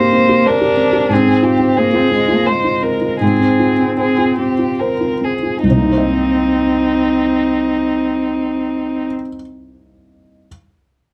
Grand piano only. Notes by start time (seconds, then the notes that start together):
Already playing: G#2 C4 G4 C5
0.13 C4
0.29 G4
0.45 C5
0.61 G4
0.77 C4
0.93 G4
1.09 G#2
1.26 C4
1.43 F4
1.59 C4
1.77 C5
1.93 F4
2.11 C4
2.28 F4
2.46 C5
2.64 F4
2.82 C4
3.01 F4
3.21 G#2
3.40 C4
3.59 F4
3.79 C4
3.98 C5
4.18 F4
4.38 C4
4.59 F4
4.80 C5
5.01 F4
5.21 C4
5.43 F4
5.63 C2
5.70 C3
5.77 A#3
5.84 D#4
5.91 C5
5.98 D#5